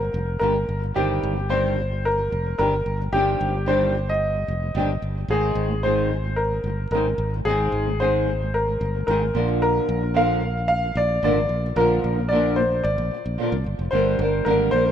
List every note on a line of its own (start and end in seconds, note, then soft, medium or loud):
0.00 0.10 G1 medium
0.00 0.12 G2 soft
0.00 0.14 D3 soft
0.00 0.15 G3 soft
0.00 0.38 A#4 medium
0.13 0.36 F1 medium
0.13 0.35 G2 soft
0.13 0.36 D3 medium
0.13 0.37 G3 medium
0.39 0.64 G1 medium
0.39 0.51 G2 medium
0.39 0.53 D3 medium
0.39 0.55 G3 medium
0.39 0.55 A#3 medium
0.39 0.56 D4 medium
0.39 0.56 G4 medium
0.39 0.78 A#4 medium
0.52 0.75 G2 soft
0.52 0.76 D3 soft
0.69 0.91 G1 medium
0.80 0.93 G2 soft
0.80 0.95 D3 soft
0.80 0.94 G3 soft
0.94 1.18 G1 medium
0.94 1.33 G2 medium
0.94 1.36 D#3 medium
0.94 1.36 G3 medium
0.94 1.36 C4 medium
0.94 1.37 D4 medium
0.94 1.52 G4 medium
0.94 1.37 G4 medium
1.23 2.28 G1 medium
1.35 1.48 G2 soft
1.35 1.48 D#3 soft
1.35 1.49 G3 soft
1.49 1.75 G2 medium
1.49 1.77 D#3 medium
1.49 1.77 G3 medium
1.49 1.77 C4 medium
1.49 1.78 D4 medium
1.49 1.78 G4 medium
1.49 2.06 C5 medium
1.77 1.88 G2 medium
1.77 1.91 G3 medium
1.89 2.12 G2 soft
1.89 2.12 D#3 soft
1.89 2.13 G3 soft
2.05 2.57 A#4 medium
2.16 2.27 G2 soft
2.16 2.29 D#3 soft
2.16 2.30 G3 soft
2.28 2.41 G2 soft
2.28 2.43 D#3 medium
2.28 2.45 G3 medium
2.32 2.54 F1 medium
2.42 2.57 G2 soft
2.42 2.58 D#3 soft
2.46 2.57 G3 soft
2.58 2.81 G1 medium
2.58 2.70 G2 medium
2.58 2.72 D#3 medium
2.58 2.72 G3 medium
2.58 2.73 C4 medium
2.58 2.73 D4 medium
2.58 2.73 G4 medium
2.58 2.96 A#4 medium
2.71 2.93 G2 soft
2.71 2.94 D#3 soft
2.86 3.08 G1 medium
2.99 3.12 G2 soft
2.99 3.12 D#3 soft
2.99 3.13 G3 soft
3.13 3.35 G1 medium
3.13 3.52 G2 medium
3.13 3.53 D#3 medium
3.13 3.54 G3 medium
3.13 3.54 C4 medium
3.13 3.54 D4 medium
3.13 3.68 G4 medium
3.13 3.55 G4 medium
3.41 4.45 G1 medium
3.53 3.65 G2 soft
3.53 3.65 D#3 soft
3.66 3.91 G2 medium
3.66 3.94 D#3 medium
3.66 3.94 G3 medium
3.66 3.94 C4 medium
3.66 3.94 D4 medium
3.66 3.95 G4 medium
3.66 4.09 C5 medium
3.92 4.04 G2 medium
3.92 4.06 D#3 medium
3.92 4.08 G3 medium
4.05 4.28 G2 soft
4.05 4.29 D#3 soft
4.05 4.30 G3 soft
4.09 4.99 D#5 medium
4.32 4.46 G2 soft
4.32 4.48 D#3 soft
4.32 4.49 G3 soft
4.47 4.70 F1 medium
4.47 4.59 G2 soft
4.47 4.62 D#3 medium
4.47 4.63 G3 medium
4.60 4.73 G2 soft
4.60 4.74 D#3 soft
4.60 4.75 G3 soft
4.74 4.97 G1 medium
4.74 4.87 G2 medium
4.74 4.89 D#3 medium
4.74 4.89 G3 medium
4.74 4.89 C4 medium
4.74 4.90 D4 medium
4.74 4.90 G4 medium
4.88 5.10 G2 soft
4.88 5.11 D#3 soft
4.88 5.12 G3 soft
5.02 5.24 G1 medium
5.15 5.29 G2 soft
5.15 5.29 D#3 soft
5.15 5.30 G3 soft
5.28 5.51 G#1 medium
5.28 5.69 G#2 medium
5.28 5.70 D#3 medium
5.28 5.71 G#3 medium
5.28 5.71 C4 medium
5.28 5.71 D#4 medium
5.28 5.86 G#4 medium
5.28 5.71 G#4 medium
5.55 6.60 G#1 medium
5.70 5.82 G#2 soft
5.70 5.83 D#3 soft
5.70 5.83 G#3 soft
5.83 6.09 G#2 medium
5.83 6.11 D#3 medium
5.83 6.11 G#3 medium
5.83 6.11 C4 medium
5.83 6.11 D#4 medium
5.83 6.12 G#4 medium
5.83 6.39 C5 medium
6.11 6.22 G#2 soft
6.11 6.23 D#3 medium
6.11 6.26 G#3 medium
6.23 6.45 G#2 soft
6.23 6.46 D#3 soft
6.23 6.47 G#3 soft
6.36 6.90 A#4 medium
6.51 6.62 G#2 soft
6.51 6.64 D#3 soft
6.51 6.66 G#3 soft
6.64 6.86 G1 medium
6.64 6.86 G#2 medium
6.64 6.87 D#3 medium
6.64 6.87 G#3 medium
6.91 7.13 G#1 medium
6.91 7.04 G#2 medium
6.91 7.05 D#3 medium
6.91 7.06 G#3 medium
6.91 7.06 C4 medium
6.91 7.07 D#4 medium
6.91 7.07 G#4 medium
6.91 7.29 A#4 medium
7.05 7.27 G#2 soft
7.05 7.27 D#3 soft
7.05 7.28 G#3 soft
7.18 7.40 G#1 medium
7.34 7.45 G#2 soft
7.34 7.46 D#3 soft
7.34 7.46 G#3 soft
7.45 7.67 G#1 medium
7.45 7.86 G#2 medium
7.45 7.87 D#3 medium
7.45 7.87 G#3 medium
7.45 7.87 C4 medium
7.45 7.88 D#4 medium
7.45 8.01 G#4 medium
7.49 7.88 G#4 medium
7.72 8.76 G#1 medium
7.88 7.98 G#2 soft
7.88 7.98 D#3 soft
8.00 8.26 G#2 medium
8.00 8.27 D#3 medium
8.00 8.27 G#3 medium
8.00 8.28 C4 medium
8.00 8.28 D#4 medium
8.00 8.28 G#4 medium
8.00 8.55 C5 medium
8.27 8.39 G#2 medium
8.27 8.41 D#3 medium
8.27 8.42 G#3 medium
8.40 8.62 G#2 soft
8.40 8.63 D#3 soft
8.40 8.63 G#3 soft
8.54 9.05 A#4 medium
8.66 8.79 G#2 soft
8.66 8.81 D#3 soft
8.66 8.82 G#3 soft
8.80 9.03 G1 medium
8.80 8.93 G#2 soft
8.80 8.95 D#3 medium
8.80 8.95 G#3 medium
8.94 9.07 G#2 soft
8.94 9.07 D#3 soft
8.94 9.08 G#3 soft
9.07 9.30 G#1 medium
9.07 9.19 G#2 medium
9.07 9.21 D#3 medium
9.07 9.22 G#3 medium
9.07 9.22 C4 medium
9.07 9.22 D#4 medium
9.07 9.22 G#4 medium
9.07 9.45 A#4 medium
9.21 9.33 G#2 soft
9.21 9.34 D#3 soft
9.21 9.34 G#3 soft
9.34 9.79 A#1 medium
9.34 9.99 A#2 medium
9.34 10.02 D3 medium
9.34 10.02 F3 medium
9.34 10.15 A#3 medium
9.34 10.16 D4 medium
9.34 10.16 A#4 medium
9.62 10.17 A#4 medium
9.89 10.92 A#1 medium
10.01 10.13 A#2 soft
10.01 10.13 D3 soft
10.01 10.14 F3 soft
10.14 10.39 A#2 medium
10.14 10.42 D3 medium
10.14 10.42 F3 medium
10.14 10.42 A#3 medium
10.14 10.43 D4 medium
10.14 10.43 A#4 medium
10.14 10.66 F5 medium
10.41 10.54 A#2 medium
10.41 10.56 D3 medium
10.41 10.57 F3 medium
10.55 10.77 A#2 soft
10.55 10.78 D3 soft
10.55 10.79 F3 soft
10.68 10.96 F5 medium
10.83 10.94 A#2 soft
10.83 10.96 D3 soft
10.83 10.97 F3 soft
10.95 11.18 A#1 medium
10.95 11.08 A#2 soft
10.95 11.10 D3 medium
10.95 11.11 F3 medium
10.95 11.22 D5 medium
11.09 11.21 A#2 soft
11.09 11.22 D3 soft
11.09 11.22 F3 soft
11.22 11.45 G#1 medium
11.22 11.36 A#2 medium
11.22 11.36 D3 medium
11.22 11.37 F3 medium
11.22 11.37 A#3 medium
11.22 11.37 D4 medium
11.22 11.38 A#4 medium
11.22 11.61 D5 medium
11.37 11.58 A#2 soft
11.37 11.60 D3 soft
11.49 11.72 A#1 medium
11.63 11.74 A#2 soft
11.63 11.75 D3 soft
11.63 11.75 F3 soft
11.76 11.99 A#1 medium
11.76 12.15 A#2 medium
11.76 12.17 D3 medium
11.76 12.17 F3 medium
11.76 12.17 A#3 medium
11.76 12.18 D4 medium
11.76 12.32 A#4 medium
11.76 12.18 A#4 medium
12.04 12.81 A#1 medium
12.16 12.30 A#2 soft
12.16 12.29 D3 soft
12.16 12.30 F3 soft
12.29 12.56 A#2 medium
12.29 12.58 D3 medium
12.29 12.58 F3 medium
12.29 12.58 A#3 medium
12.29 12.59 D4 medium
12.29 12.57 D5 medium
12.33 12.59 A#4 medium
12.56 12.68 A#2 medium
12.56 12.71 D3 soft
12.56 12.72 F3 medium
12.56 12.85 C5 medium
12.70 12.92 A#2 soft
12.70 12.93 D3 soft
12.74 12.94 F3 soft
12.84 12.95 G#1 medium
12.84 13.61 D5 medium
12.98 13.09 A#1 medium
12.98 13.10 A#2 soft
12.98 13.12 D3 soft
12.98 13.13 F3 soft
13.11 13.33 A#2 medium
13.11 13.34 D3 medium
13.11 13.35 F3 medium
13.26 13.36 A#1 medium
13.38 13.50 A#2 medium
13.38 13.52 D3 medium
13.38 13.52 F3 medium
13.38 13.53 A#3 medium
13.38 13.52 D4 medium
13.38 13.53 A#4 medium
13.51 13.63 C2 medium
13.51 13.73 A#2 soft
13.51 13.74 D3 soft
13.51 13.75 F3 soft
13.66 13.77 G1 medium
13.78 13.90 F1 medium
13.78 13.91 A#2 soft
13.78 13.91 D3 soft
13.78 13.92 F3 soft
13.91 14.15 G1 medium
13.91 14.19 G2 medium
13.91 14.19 D3 medium
13.91 14.17 G3 medium
13.91 14.18 A#3 medium
13.91 14.19 D4 medium
13.91 14.20 A#4 medium
13.91 14.47 C5 medium
14.18 14.41 G1 medium
14.18 14.46 G3 medium
14.18 14.46 A#3 medium
14.18 14.46 D4 medium
14.18 14.47 A#4 medium
14.45 14.68 G#1 medium
14.45 14.73 G2 medium
14.45 14.73 D3 medium
14.45 14.71 G3 medium
14.45 14.72 A#3 medium
14.45 14.73 D4 medium
14.45 14.73 A#4 medium
14.45 14.74 A#4 medium
14.71 14.92 A#1 medium
14.71 14.86 G3 soft
14.71 14.86 A#3 medium
14.71 14.86 D4 medium
14.71 14.92 C5 medium
14.75 14.84 A#4 medium
14.85 14.92 G3 soft
14.85 14.92 A#3 soft
14.85 14.92 D4 soft
14.85 14.92 A#4 soft